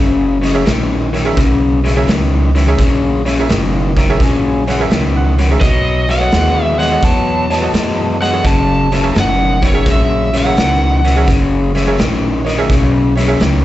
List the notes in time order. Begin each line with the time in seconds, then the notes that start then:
Already playing: F#1 F#2 C#3
0.41 F#2 C#3 C#5 D#5, snare, closed hi-hat
0.54 G#4 A#4 C#5 E5
0.65 A#1 F#2 D#3, snare, closed hi-hat
1.13 F#2 D#3 C#5 E5, snare, closed hi-hat
1.25 G#4 A#4 C#5 E5
1.36 B1 F#2 C#3, kick, snare, closed hi-hat
1.84 F#2 C#3 C#5 E5, snare, closed hi-hat
1.96 G#4 A#4 C#5 E5
2.07 C#2 F#2 D#3, snare, closed hi-hat
2.55 F#2 D#3 C#5 E5, snare, closed hi-hat
2.67 G#4 A#4 C#5 E5
2.78 A#1 F#2 C#3, kick, snare, closed hi-hat
3.25 F#2 C#3 C#5 E5, snare, closed hi-hat
3.39 G#4 A#4 C#5 E5
3.49 F#1 F#2 D#3, snare, closed hi-hat
3.97 F#2 D#3 C#5 E5 A#5, kick, snare, closed hi-hat
4.10 G#4 A#4 C#5 E5
4.20 A#1 F#2 C#3 G#5, kick, snare, closed hi-hat
4.67 F#2 C#3 C#5 E5 F#5, snare, closed hi-hat
4.80 G#4 A#4 C#5 E5
4.90 C#2 F#2 D#3, snare, closed hi-hat
5.16 F#5
5.38 F#2 D#3 C#5 F#5, snare, closed hi-hat
5.51 G#4 A#4 C#5 E5
5.61 B1 B2 F#3 D#5, kick, snare, closed hi-hat
6.09 B2 F#3 C#5 D#5 F#5, snare, closed hi-hat
6.20 F#4 A4 C#5 D#5
6.31 D#2 B2 G#3, snare, closed hi-hat
6.65 E5
6.79 B2 G#3 C#5 D#5 F#5, snare, closed hi-hat
6.91 F#4 A4 C#5 D#5
7.02 E2 B2 F#3 A5, kick, snare, closed hi-hat
7.50 B2 F#3 C#5 D#5, snare, closed hi-hat
7.62 F#4 A4 C#5 D#5
7.73 F#2 B2 G#3, snare, closed hi-hat
8.21 B2 G#3 C#5 D#5 F#5, snare, closed hi-hat
8.33 F#4 A4 C#5 D#5
8.44 F#1 F#2 C#3 A5, kick, snare, closed hi-hat
8.92 F#2 C#3 C#5 E5, snare, closed hi-hat
9.03 G#4 A#4 C#5 E5
9.14 F#1 F#2 D#3, snare, closed hi-hat
9.20 F#5
9.62 F#2 D#3 C#5 E5, kick, snare, closed hi-hat
9.67 C#5
9.73 G#4 A#4 C#5 E5
9.85 A#1 F#2 C#3, kick, snare, closed hi-hat
9.91 E5
10.33 F#2 C#3 C#5 E5, snare, closed hi-hat
10.38 F#5
10.45 G#4 A#4 C#5 E5
10.57 C#2 F#2 D#3, snare, closed hi-hat
11.04 F#2 D#3 C#5 E5, snare, closed hi-hat
11.16 G#4 A#4 C#5 E5
11.28 F#1 F#2 C#3, kick, snare, closed hi-hat
11.75 F#2 C#3 C#5 E5, snare, closed hi-hat
11.87 G#4 A#4 C#5 E5
11.98 A#1 F#2 D#3, snare, closed hi-hat
12.45 F#2 D#3 C#5 D#5, snare, closed hi-hat
12.58 G#4 A#4 C#5 E5
12.70 B1 F#2 C#3, kick, snare, closed hi-hat
13.16 F#2 C#3 C#5 E5, snare, closed hi-hat
13.28 G#4 A#4 C#5 E5
13.40 C#2 F#2 D#3, snare, closed hi-hat